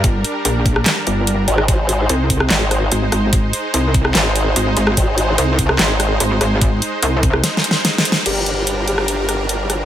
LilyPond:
<<
  \new Staff \with { instrumentName = "Felt piano" } { \time 4/4 \key aes \lydian \tempo 4 = 146 r1 | r1 | r1 | r1 |
r1 | g'4. g'4. r4 | }
  \new Staff \with { instrumentName = "Supersaw synth" } { \time 4/4 \key aes \lydian <g d' bes'>1 | <aes ees' c''>1~ | <aes ees' c''>1~ | <aes ees' c''>1~ |
<aes ees' c''>1 | <g d' bes'>1 | }
  \new Staff \with { instrumentName = "Wobble bass" } { \clef bass \time 4/4 \key aes \lydian r2. r8 aes,,8 | aes,,4 r4 aes,,4 r4 | r2 aes,,4 r4 | aes,,4 r4 aes,,4 r4 |
r1 | g,,1 | }
  \new Staff \with { instrumentName = "Wobble bass" } { \clef bass \time 4/4 \key aes \lydian g,,8 r8 bes,,4 r8 g,,4 r8 | r4 c,4 r4 aes,,8 aes,,8 | aes,,8 r8 c,4 r4 aes,,8 aes,,8 | r4 c,4 r4 aes,,8 aes,,8 |
aes,,8 r8 c,4 r2 | r1 | }
  \new DrumStaff \with { instrumentName = "Drums" } \drummode { \time 4/4 <hh bd>8 hh8 hh8 <hh bd>16 ss16 <hc hh sn>8 hh8 hh8 hh16 ss16 | <hh bd>8 hh8 hh8 <hh bd>16 ss16 <hc hh sn>8 <hh ss>8 hh8 <hh ss>8 | <hh bd>8 hh8 hh8 <hh bd>16 ss16 <hc hh sn>8 hh8 hh8 hh16 ss16 | <hh bd>8 hh8 hh8 <hh bd>16 ss16 <hc hh sn>8 <hh ss>8 hh8 <hh ss>8 |
<hh bd>8 hh8 hh8 <hh bd>16 ss16 \tuplet 3/2 { <hh sn>16 r16 sn16 hh16 sn16 r16 <hh sn>16 r16 sn16 hh16 sn16 r16 } | <cymc hh>8 hh8 hh8 hh16 ss16 hh8 <hh ss>8 hh8 <hh ss>8 | }
>>